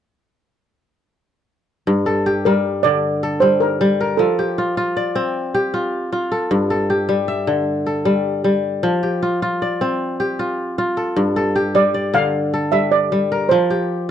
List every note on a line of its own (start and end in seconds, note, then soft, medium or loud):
1.87 4.21 G2 medium
2.06 3.23 A4 medium
2.26 3.67 G4 medium
2.45 2.88 G3 medium
2.45 2.81 A#4 medium
2.83 4.24 D3 medium
2.83 3.37 D5 medium
3.23 4.07 A4 medium
3.40 3.80 G3 medium
3.40 3.61 C5 medium
3.60 3.97 A#4 medium
3.81 4.24 G3 medium
4.01 5.28 A#4 medium
4.17 6.53 F3 medium
4.17 4.91 A4 medium
4.39 5.54 G4 medium
4.58 4.77 F4 medium
4.77 5.73 F4 medium
4.97 6.07 D5 medium
5.15 6.95 C4 medium
5.54 6.89 G4 medium
5.74 6.12 F4 medium
6.12 7.34 F4 medium
6.32 6.70 A4 medium
6.51 8.85 G2 medium
6.70 7.86 A4 medium
6.90 8.31 G4 medium
7.09 7.53 G3 medium
7.28 8.31 E5 medium
7.47 8.89 D3 medium
7.86 9.18 A4 medium
8.05 8.43 G3 medium
8.44 8.89 G3 medium
8.83 11.17 F3 medium
9.03 10.19 G4 medium
9.22 9.42 F4 medium
9.42 10.39 F4 medium
9.62 10.73 D5 medium
9.81 11.61 C4 medium
10.20 11.55 G4 medium
10.39 10.78 F4 medium
10.78 12.30 F4 medium
10.97 11.36 A4 medium
11.16 13.50 G2 medium
11.36 12.53 A4 medium
11.56 12.97 G4 medium
11.75 12.19 G3 medium
11.75 12.16 D5 medium
11.94 13.05 D5 medium
12.14 13.56 D3 medium
12.14 12.75 F5 medium
12.54 13.38 A4 medium
12.72 13.11 G3 medium
12.72 12.92 E5 medium
12.92 13.28 D5 medium
13.12 13.56 G3 medium
13.32 14.11 A#4 medium
13.49 14.11 F3 medium
13.49 14.11 C5 medium
13.70 14.11 G4 soft